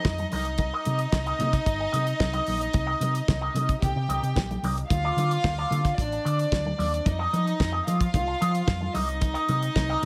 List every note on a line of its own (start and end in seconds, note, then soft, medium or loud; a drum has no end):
0.00 0.28 D#4 medium
0.00 0.29 D#5 loud
0.04 0.24 F2 medium
0.04 muted clean electric guitar stroke soft
0.04 kick loud
0.04 snare loud
0.04 high conga medium
0.18 muted clean electric guitar stroke medium
0.18 closed hi-hat soft
0.18 high conga medium
0.32 0.70 C2 medium
0.32 0.52 D#4 medium
0.32 3.79 D#4 medium
0.32 0.46 G4 medium
0.32 0.45 A#4 medium
0.32 3.79 D#5 medium
0.32 0.45 D#5 medium
0.32 open hi-hat medium
0.32 high conga medium
0.45 muted clean electric guitar stroke soft
0.45 closed hi-hat soft
0.58 muted clean electric guitar stroke soft
0.58 kick loud
0.58 closed hi-hat medium
0.58 muted conga medium
0.73 0.85 D#4 medium
0.73 0.85 G4 medium
0.73 0.86 A#4 medium
0.73 0.86 D#5 medium
0.85 1.05 C3 medium
0.85 1.02 D#4 medium
0.85 1.00 G4 medium
0.85 1.00 A#4 medium
0.85 0.99 D#5 medium
0.85 closed hi-hat medium
0.85 muted conga medium
0.99 muted clean electric guitar stroke soft
0.99 closed hi-hat soft
1.12 1.31 C2 loud
1.12 muted clean electric guitar stroke soft
1.12 kick loud
1.12 snare loud
1.12 high conga medium
1.26 1.38 D#4 medium
1.26 1.38 G4 medium
1.26 1.39 A#4 medium
1.26 1.39 D#5 medium
1.26 closed hi-hat soft
1.39 1.58 C3 medium
1.39 1.55 D#4 medium
1.39 1.52 G4 medium
1.39 1.52 A#4 medium
1.39 1.51 D#5 medium
1.39 closed hi-hat medium
1.39 muted conga medium
1.39 low conga medium
1.53 muted clean electric guitar stroke soft
1.53 kick medium
1.53 snare soft
1.53 closed hi-hat soft
1.66 1.85 G1 medium
1.66 kick loud
1.66 closed hi-hat medium
1.79 muted clean electric guitar stroke medium
1.92 2.12 C3 medium
1.92 2.13 D#4 medium
1.92 2.06 G4 medium
1.92 2.06 A#4 medium
1.92 2.05 D#5 medium
1.92 closed hi-hat medium
1.96 muted conga soft
2.06 muted clean electric guitar stroke soft
2.06 closed hi-hat soft
2.20 2.39 C2 medium
2.20 muted clean electric guitar stroke soft
2.20 kick loud
2.20 snare loud
2.20 high conga medium
2.33 2.46 D#4 medium
2.33 2.46 G4 medium
2.33 2.46 A#4 medium
2.33 2.47 D#5 medium
2.33 closed hi-hat soft
2.33 high conga medium
2.47 2.66 A#1 medium
2.47 2.63 D#4 medium
2.47 2.61 G4 medium
2.47 2.60 A#4 medium
2.47 2.60 D#5 medium
2.47 open hi-hat medium
2.47 high conga medium
2.61 muted clean electric guitar stroke soft
2.61 closed hi-hat soft
2.73 2.93 C2 medium
2.73 muted clean electric guitar stroke soft
2.73 kick loud
2.73 closed hi-hat medium
2.73 muted conga medium
2.87 3.00 D#4 medium
2.87 3.00 G4 medium
2.87 3.01 A#4 medium
2.87 3.01 D#5 medium
3.00 3.20 C3 medium
3.00 3.18 D#4 medium
3.00 3.14 G4 medium
3.00 3.14 A#4 medium
3.00 3.13 D#5 medium
3.00 closed hi-hat medium
3.00 muted conga medium
3.15 muted clean electric guitar stroke soft
3.15 closed hi-hat soft
3.28 3.47 C2 medium
3.28 muted clean electric guitar stroke soft
3.28 kick loud
3.28 snare loud
3.28 high conga medium
3.41 3.54 D#4 medium
3.41 3.54 G4 medium
3.41 3.54 A#4 medium
3.41 3.55 D#5 medium
3.54 3.74 C3 medium
3.54 3.71 D#4 medium
3.54 3.69 G4 medium
3.54 3.69 A#4 medium
3.54 3.69 D#5 medium
3.54 closed hi-hat medium
3.54 muted conga medium
3.69 muted clean electric guitar stroke soft
3.69 kick medium
3.69 closed hi-hat soft
3.82 3.92 C2 medium
3.82 4.62 G4 medium
3.82 4.62 G5 medium
3.82 kick loud
3.82 closed hi-hat medium
3.82 low conga medium
3.96 4.05 C3 medium
3.96 muted clean electric guitar stroke soft
4.08 4.18 C2 medium
4.08 4.30 D#4 medium
4.08 4.23 G4 loud
4.08 4.23 A#4 loud
4.08 4.22 D#5 loud
4.08 closed hi-hat medium
4.08 muted conga soft
4.22 4.32 C3 medium
4.22 muted clean electric guitar stroke soft
4.22 closed hi-hat soft
4.36 4.55 A#1 medium
4.36 muted clean electric guitar stroke soft
4.36 kick loud
4.36 snare loud
4.36 high conga medium
4.51 muted clean electric guitar stroke soft
4.51 closed hi-hat soft
4.51 high conga medium
4.63 4.82 C2 medium
4.63 4.84 D#4 medium
4.63 4.77 G4 loud
4.63 4.76 A#4 loud
4.63 4.76 D#5 medium
4.63 open hi-hat medium
4.63 high conga medium
4.77 muted clean electric guitar stroke soft
4.77 closed hi-hat soft
4.90 5.09 D2 medium
4.90 5.96 F4 medium
4.90 5.96 F5 loud
4.90 muted clean electric guitar stroke soft
4.90 kick loud
4.90 closed hi-hat medium
4.90 muted conga medium
5.04 5.16 C4 medium
5.04 5.17 F4 medium
5.04 5.17 A4 medium
5.04 5.17 D5 medium
5.16 5.36 D3 medium
5.16 5.33 C4 medium
5.16 5.31 F4 medium
5.16 5.31 A4 medium
5.16 5.30 D5 medium
5.16 closed hi-hat medium
5.16 muted conga medium
5.31 muted clean electric guitar stroke soft
5.31 closed hi-hat soft
5.44 5.63 D2 loud
5.44 muted clean electric guitar stroke soft
5.44 kick loud
5.44 snare loud
5.44 high conga medium
5.58 5.71 C4 medium
5.58 5.71 F4 medium
5.58 5.72 A4 medium
5.58 5.72 D5 medium
5.71 5.91 D3 loud
5.71 5.88 C4 medium
5.71 5.85 F4 medium
5.71 5.85 A4 medium
5.71 5.84 D5 medium
5.71 closed hi-hat medium
5.71 muted conga medium
5.71 low conga medium
5.85 muted clean electric guitar stroke soft
5.85 kick medium
5.85 snare soft
5.85 closed hi-hat soft
5.98 6.17 A1 medium
5.98 7.05 D4 medium
5.98 7.05 D5 medium
5.98 kick loud
5.98 closed hi-hat medium
6.12 muted clean electric guitar stroke soft
6.12 closed hi-hat soft
6.25 6.44 D3 medium
6.25 6.46 C4 medium
6.25 6.38 F4 medium
6.25 6.37 A4 medium
6.25 6.37 D5 medium
6.25 closed hi-hat medium
6.38 muted clean electric guitar stroke soft
6.38 closed hi-hat soft
6.52 6.71 D2 medium
6.52 muted clean electric guitar stroke soft
6.52 kick loud
6.52 snare loud
6.52 high conga medium
6.66 muted clean electric guitar stroke soft
6.66 high conga medium
6.78 6.98 D#2 medium
6.78 6.99 C4 medium
6.78 6.92 F4 loud
6.78 6.91 A4 medium
6.78 6.91 D5 medium
6.78 open hi-hat medium
6.78 high conga medium
6.92 muted clean electric guitar stroke soft
6.92 closed hi-hat soft
7.05 7.25 F2 medium
7.05 7.86 D#4 medium
7.05 7.86 D#5 medium
7.05 muted clean electric guitar stroke soft
7.05 kick loud
7.05 closed hi-hat medium
7.05 muted conga medium
7.19 7.31 C4 medium
7.19 7.32 G4 medium
7.19 7.33 A4 medium
7.19 7.32 D#5 medium
7.33 7.52 F3 medium
7.33 7.49 C4 medium
7.33 7.46 G4 medium
7.33 7.46 A4 medium
7.33 7.45 D#5 medium
7.33 closed hi-hat medium
7.33 muted conga medium
7.46 muted clean electric guitar stroke soft
7.46 closed hi-hat soft
7.60 7.79 F2 loud
7.60 muted clean electric guitar stroke soft
7.60 kick loud
7.60 snare loud
7.60 high conga medium
7.72 7.84 C4 medium
7.72 7.85 G4 medium
7.72 7.85 A4 medium
7.72 7.86 D#5 medium
7.85 8.07 F3 loud
7.85 8.03 C4 medium
7.85 8.93 F4 medium
7.85 7.99 G4 medium
7.85 7.99 A4 medium
7.85 7.98 D#5 medium
7.85 8.93 F5 medium
7.85 closed hi-hat medium
7.85 muted conga medium
7.99 muted clean electric guitar stroke soft
7.99 kick loud
7.99 closed hi-hat medium
8.14 8.33 C2 medium
8.14 kick loud
8.14 closed hi-hat medium
8.14 low conga medium
8.27 muted clean electric guitar stroke soft
8.41 8.61 F3 loud
8.41 8.62 C4 medium
8.41 8.53 G4 medium
8.41 8.53 A4 medium
8.41 8.52 D#5 medium
8.41 closed hi-hat medium
8.41 muted conga soft
8.53 muted clean electric guitar stroke soft
8.53 closed hi-hat soft
8.67 8.87 F2 loud
8.67 muted clean electric guitar stroke soft
8.67 kick loud
8.67 snare loud
8.67 high conga medium
8.80 muted clean electric guitar stroke soft
8.80 high conga medium
8.94 9.34 C2 loud
8.94 9.15 C4 medium
8.94 10.05 D#4 medium
8.94 9.08 G4 medium
8.94 9.07 A#4 medium
8.94 10.05 D#5 medium
8.94 9.07 D#5 loud
8.94 open hi-hat medium
8.94 high conga medium
9.08 muted clean electric guitar stroke soft
9.08 closed hi-hat soft
9.21 muted clean electric guitar stroke soft
9.21 kick loud
9.21 closed hi-hat medium
9.21 muted conga medium
9.34 9.47 C4 medium
9.34 9.48 G4 medium
9.34 9.48 A#4 medium
9.34 9.49 D#5 medium
9.34 closed hi-hat soft
9.48 9.68 C3 loud
9.48 9.65 C4 medium
9.48 9.62 G4 medium
9.48 9.61 A#4 medium
9.48 9.61 D#5 medium
9.48 closed hi-hat medium
9.48 muted conga medium
9.62 muted clean electric guitar stroke soft
9.62 closed hi-hat soft
9.75 9.95 C2 loud
9.75 muted clean electric guitar stroke soft
9.75 kick loud
9.75 snare medium
9.75 high conga medium
9.89 10.01 C4 medium
9.89 10.02 G4 medium
9.89 10.02 A#4 medium
9.89 10.03 D#5 medium